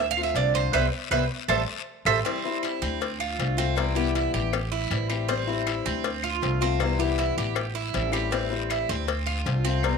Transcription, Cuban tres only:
0.00 0.10 E5 medium
0.11 0.23 F5 loud
0.23 0.35 E5 medium
0.36 0.54 D5 medium
0.55 0.72 C5 loud
0.73 0.86 B4 loud
0.73 0.85 C5 medium
0.73 0.85 E5 medium
1.11 1.23 B4 loud
1.11 1.24 C5 medium
1.11 1.24 E5 medium
1.48 1.61 A4 medium
1.48 1.61 C5 medium
1.48 1.61 E5 medium
2.06 2.18 A4 medium
2.06 2.18 C5 loud
2.06 2.18 E5 loud
2.25 2.62 C4 medium
2.63 2.81 E4 medium
2.82 3.19 C4 medium
3.20 3.57 F4 medium
3.58 3.95 C4 loud
3.96 4.14 G4 medium
4.15 4.33 E4 medium
4.34 4.71 G4 medium
4.72 5.08 E4 medium
5.10 5.28 G4 medium
5.28 5.65 C4 medium
5.67 5.85 E4 medium
5.86 6.22 C4 loud
6.24 6.60 F4 medium
6.62 6.98 C4 medium
7.00 7.18 G4 medium
7.19 7.37 E4 medium
7.38 7.74 G4 medium
7.75 8.12 E4 medium
8.13 8.31 G4 medium
8.32 8.69 C4 medium
8.70 8.88 E4 medium
8.89 9.26 C4 loud
9.26 9.63 F4 medium
9.65 9.98 C4 loud

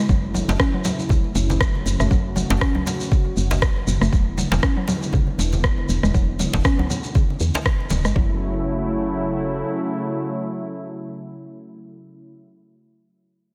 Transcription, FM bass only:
0.09 0.43 F#1 loud
0.48 0.57 F#1 loud
1.35 1.81 F#1 loud
1.86 1.96 F#1 loud
2.00 2.08 F#1 loud
2.11 2.44 F#1 loud
2.50 2.58 F#1 loud
3.37 3.83 F#1 loud
3.87 3.98 F#1 loud
4.01 4.09 F#1 loud
4.13 4.46 E1 medium
4.52 4.60 E1 loud
5.38 5.84 E1 medium
5.89 5.99 E1 loud
6.03 6.11 E1 loud
6.14 6.48 E1 loud
6.54 6.62 E1 loud
7.40 7.51 E2 medium
7.90 8.06 D1 medium
8.05 8.13 G#1 medium
8.16 9.63 F#1 medium

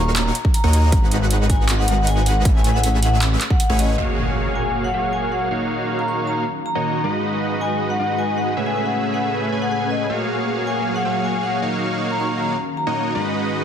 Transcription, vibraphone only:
0.16 0.26 A#5 loud
0.54 0.96 A#5 loud
1.50 1.60 G#5 loud
1.79 2.05 F#5 medium
2.07 2.17 G#5 loud
2.26 2.36 F#5 medium
2.55 2.61 G#5 loud
2.64 2.71 G#5 medium
2.74 2.84 F#5 medium
3.03 3.13 F#5 loud
3.51 3.57 F#5 medium
3.60 3.66 F#5 medium
3.79 3.98 D#5 medium
4.56 4.66 G#5 medium
4.84 5.11 F#5 medium
5.13 5.23 G#5 medium
5.32 5.42 F#5 medium
5.99 6.06 A#5 medium
6.08 6.19 C#6 medium
6.27 6.38 A#5 medium
6.66 7.08 A#5 medium
7.61 7.72 G#5 medium
7.90 8.17 F#5 medium
8.19 8.29 G#5 medium
8.38 8.48 F#5 medium
8.66 8.72 G#5 medium
8.76 8.82 G#5 medium
8.86 8.96 F#5 medium
9.14 9.24 F#5 medium
9.62 9.68 F#5 medium
9.71 9.78 F#5 medium
9.91 10.13 D#5 medium
10.67 10.77 G#5 medium
10.96 11.22 F#5 medium
11.24 11.35 G#5 medium
11.43 11.54 F#5 medium
12.11 12.18 A#5 medium
12.20 12.30 C#6 medium
12.39 12.49 A#5 medium
12.77 13.19 A#5 medium

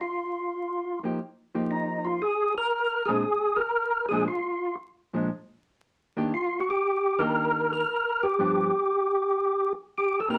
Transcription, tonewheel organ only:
0.01 0.99 F4 medium
1.71 2.07 D#4 medium
2.05 2.22 F4 medium
2.22 2.54 G#4 loud
2.58 3.10 A#4 loud
3.06 3.60 G#4 medium
3.56 4.06 A#4 loud
4.09 4.25 G#4 medium
4.28 4.75 F4 medium
6.34 6.60 F4 medium
6.60 6.69 F#4 medium
6.70 7.22 G4 medium
7.19 7.72 A#4 medium
7.73 8.25 A#4 medium
8.23 9.73 G4 medium
9.98 10.20 G4 medium
10.20 10.28 A4 medium
10.30 10.38 A#4 medium

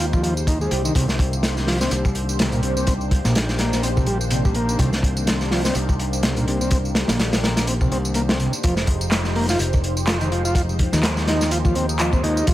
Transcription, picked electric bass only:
0.00 0.66 D#2 loud
0.71 0.89 C2 medium
0.95 1.86 C2 loud
1.91 3.19 C2 loud
3.25 4.75 A#1 loud
4.79 5.70 C2 loud
5.75 7.03 C2 loud
7.09 7.91 A#1 loud
7.91 8.47 C2 medium
8.64 9.55 F1 loud
9.59 10.87 F1 medium
10.93 12.23 D#2 medium
12.23 12.41 D#2 medium
12.47 12.54 F1 loud

